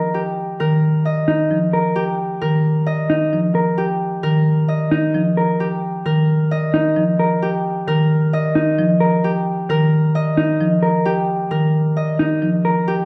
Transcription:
Already playing: harp G4 A#4 D#5, clean electric guitar A#4
0.14 harp G4
0.60 marimba D#3, harp A#4
1.05 harp D#5
1.28 clean electric guitar D#4
1.51 marimba F3
1.73 clean electric guitar A#4
1.96 harp G4
2.41 marimba D#3, harp A#4
2.87 harp D#5
3.10 clean electric guitar D#4
3.33 marimba F3
3.55 clean electric guitar A#4
3.78 harp G4
4.23 marimba D#3, harp A#4
4.68 harp D#5
4.91 clean electric guitar D#4
5.14 marimba F3
5.37 clean electric guitar A#4
5.60 harp G4
6.06 marimba D#3, harp A#4
6.51 harp D#5
6.74 clean electric guitar D#4
6.96 marimba F3
7.19 clean electric guitar A#4
7.42 harp G4
7.88 marimba D#3, harp A#4
8.33 harp D#5
8.55 clean electric guitar D#4
8.79 marimba F3
9.00 clean electric guitar A#4
9.24 harp G4
9.69 marimba D#3, harp A#4
10.15 harp D#5
10.37 clean electric guitar D#4
10.61 marimba F3
10.83 clean electric guitar A#4
11.05 harp G4
11.51 marimba D#3, harp A#4
11.97 harp D#5
12.19 clean electric guitar D#4
12.42 marimba F3
12.65 clean electric guitar A#4
12.88 harp G4

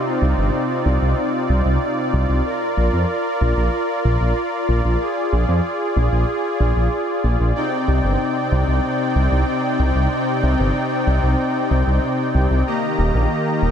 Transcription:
Already playing: supersaw synth C3 C4 D#4 F4 D5
0.22 detuned saw bass C2
0.38 detuned saw bass G1
0.86 detuned saw bass C2
1.02 detuned saw bass C2
1.49 detuned saw bass C2
1.65 detuned saw bass C2
2.13 detuned saw bass C2
2.29 detuned saw bass C2
2.45 supersaw synth A#4
2.77 detuned saw bass A#1
2.93 detuned saw bass F2
3.41 detuned saw bass A#1
3.57 detuned saw bass A#1
4.05 detuned saw bass A#1
4.21 detuned saw bass A#1
4.69 detuned saw bass A#1
4.85 detuned saw bass A#1
5.01 supersaw synth G#4
5.33 detuned saw bass A#1
5.48 detuned saw bass F2
5.96 detuned saw bass A#1
6.12 detuned saw bass A#1
6.60 detuned saw bass A#1
6.76 detuned saw bass A#1
7.24 detuned saw bass A#1
7.40 detuned saw bass A#1
7.56 supersaw synth C3 C4 D#4 D5 G5
7.88 detuned saw bass C2
8.04 detuned saw bass G1
8.52 detuned saw bass C2
8.68 detuned saw bass C2
9.16 detuned saw bass C2
9.31 detuned saw bass C2
9.79 detuned saw bass C2
9.95 detuned saw bass C2
10.43 detuned saw bass C2
10.59 detuned saw bass G1
11.07 detuned saw bass C2
11.23 detuned saw bass C2
11.71 detuned saw bass C2
11.87 detuned saw bass C2
12.35 detuned saw bass C2
12.51 detuned saw bass C2
12.66 supersaw synth D#3 A#3 G4 D#5 A#5
12.98 detuned saw bass D#1
13.14 detuned saw bass A#1
13.62 detuned saw bass D#1

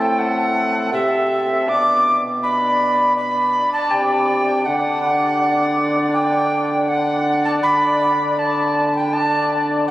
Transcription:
Already playing: trombone A2, bassoon C4, cornet A4
0.00 recorder G5
0.18 recorder F#5
0.92 trombone C3, bassoon C4, cornet A4, recorder E5
1.67 trombone B2, bassoon D4, cornet D5, recorder D6
2.42 bassoon D4, cornet D5, recorder B5
3.16 bassoon D4, cornet D5, recorder B5
3.73 recorder A5
3.91 trombone C3, recorder G5
4.65 trombone D3, bassoon D4, cornet D5, recorder F#5
6.13 recorder G5
6.88 bassoon D4, cornet D5, recorder F#5
7.45 recorder A5
7.63 trombone D3, recorder B5
8.38 bassoon D4, cornet D5, recorder A5
8.95 recorder G5
9.13 bassoon D4, cornet D5, recorder A5

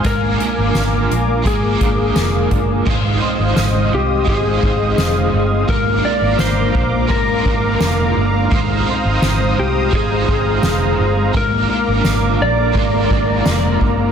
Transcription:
Already playing: clean electric guitar G#3 C4, analog synth pad F5 G#5
0.04 fingered electric bass G#1, overdriven electric guitar G#3 D4 F4 A#4, clean electric guitar G#3, analog synth pad A#4 D6, electric slide guitar A#4, kick, closed hi-hat
0.22 clean electric guitar A#3
0.39 clean electric guitar D4, overdriven electric guitar F4 A#4, closed hi-hat
0.44 overdriven electric guitar D4
0.58 fingered electric bass G#1, clean electric guitar A#3
0.75 fingered electric bass G#1, clean electric guitar D4, snare, closed hi-hat, tambourine
0.92 clean electric guitar A#3
1.10 fingered electric bass A#1, clean electric guitar D4, closed hi-hat
1.28 clean electric guitar A#3
1.42 fingered electric bass G#1, overdriven electric guitar G#3, clean electric guitar G#3, kick, closed hi-hat
1.47 overdriven electric guitar D4 F4, electric slide guitar G#4
1.53 overdriven electric guitar A#4
1.63 clean electric guitar A#3
1.81 fingered electric bass G#1, clean electric guitar D4, kick, closed hi-hat
1.98 clean electric guitar A#3
2.16 fingered electric bass F1, clean electric guitar D4, snare, closed hi-hat, tambourine
2.34 clean electric guitar A#3
2.51 fingered electric bass G1, clean electric guitar D4, kick, closed hi-hat
2.69 clean electric guitar A#3
2.85 fingered electric bass G#1, clean electric guitar G#2, overdriven electric guitar G#3 D#4 F4 C5, analog synth pad C5 D#5 F5 D#6, kick, crash
3.04 clean electric guitar G#3
3.20 clean electric guitar C4, overdriven electric guitar F4 C5, ride
3.25 overdriven electric guitar D#4
3.39 fingered electric bass G#1, clean electric guitar G#3
3.56 fingered electric bass G#1, clean electric guitar C4, snare, ride, tambourine
3.74 clean electric guitar G#3
3.92 fingered electric bass C2, clean electric guitar C4, electric slide guitar G4
4.11 clean electric guitar G#3
4.24 fingered electric bass G#1, overdriven electric guitar G#3 D#4, kick, ride
4.29 overdriven electric guitar F4, electric slide guitar G#4
4.35 overdriven electric guitar C5
4.46 clean electric guitar G#3
4.63 fingered electric bass G#1, clean electric guitar C4, kick, ride
4.81 clean electric guitar G#3
4.97 fingered electric bass F1, clean electric guitar C4, snare, tambourine
5.17 clean electric guitar G#3
5.33 fingered electric bass G1, clean electric guitar C4, ride
5.52 clean electric guitar G#3
5.68 fingered electric bass G#1, overdriven electric guitar G#3 D4 F4 A#4, clean electric guitar G#3, analog synth pad A#4 A#5 D6, electric slide guitar A#4, kick, ride
5.87 clean electric guitar A#3
6.02 clean electric guitar D4, overdriven electric guitar F4 A#4, electric slide guitar D5, ride
6.08 overdriven electric guitar D4
6.21 fingered electric bass G#1, clean electric guitar A#3
6.39 fingered electric bass G#1, electric slide guitar C5, snare, tambourine
6.57 clean electric guitar A#3
6.75 fingered electric bass A#1, clean electric guitar D4, kick
6.93 clean electric guitar A#3
7.07 fingered electric bass G#1, overdriven electric guitar G#3, clean electric guitar G#3, electric slide guitar A#4, kick
7.11 overdriven electric guitar D4 F4
7.18 overdriven electric guitar A#4
7.28 clean electric guitar A#3
7.45 fingered electric bass G#1, clean electric guitar D4, kick, ride
7.63 clean electric guitar A#3
7.80 fingered electric bass F1, clean electric guitar D4, snare, ride, tambourine
7.99 clean electric guitar A#3
8.16 fingered electric bass G1, clean electric guitar D4, ride
8.34 clean electric guitar A#3
8.50 fingered electric bass G#1, clean electric guitar G#2, overdriven electric guitar G#3 D#4 F4 C5, analog synth pad C5 D#6, kick, ride
8.69 clean electric guitar G#3
8.86 clean electric guitar C4, overdriven electric guitar F4 C5, ride
8.90 overdriven electric guitar D#4
9.05 fingered electric bass G#1, clean electric guitar G#3
9.22 fingered electric bass G#1, clean electric guitar C4, snare, ride, tambourine
9.40 clean electric guitar G#3
9.58 fingered electric bass C2, clean electric guitar C4, electric slide guitar G4, ride
9.75 clean electric guitar G#3
9.90 fingered electric bass G#1, overdriven electric guitar G#3, kick, ride
9.94 overdriven electric guitar D#4 F4, electric slide guitar G#4
10.00 overdriven electric guitar C5
10.10 clean electric guitar G#3
10.28 fingered electric bass G#1, clean electric guitar C4, kick, ride
10.46 clean electric guitar G#3
10.63 fingered electric bass F1, clean electric guitar C4, snare, ride, tambourine
10.80 clean electric guitar G#3
10.98 fingered electric bass G1, clean electric guitar C4, ride
11.16 clean electric guitar G#3
11.33 fingered electric bass G#1, overdriven electric guitar G#3 D4 F4 A#4, clean electric guitar G#3, analog synth pad A#4 D6, electric slide guitar A#4, kick
11.51 clean electric guitar A#3
11.68 clean electric guitar D4, overdriven electric guitar F4 A#4, ride
11.74 overdriven electric guitar D4
11.87 fingered electric bass G#1, clean electric guitar A#3
12.04 fingered electric bass G#1, clean electric guitar D4, snare, tambourine
12.22 clean electric guitar A#3
12.40 fingered electric bass A#1, clean electric guitar D4, electric slide guitar D5, ride
12.57 clean electric guitar A#3
12.72 fingered electric bass G#1, overdriven electric guitar G#3, clean electric guitar G#3, kick, ride
12.77 overdriven electric guitar D4 F4
12.83 overdriven electric guitar A#4
12.93 clean electric guitar A#3
13.10 fingered electric bass G#1, clean electric guitar D4, kick, ride
13.28 clean electric guitar A#3
13.45 fingered electric bass F1, clean electric guitar D4, snare, ride, tambourine
13.64 clean electric guitar A#3
13.81 fingered electric bass G1, clean electric guitar D4, kick, ride
13.98 clean electric guitar A#3

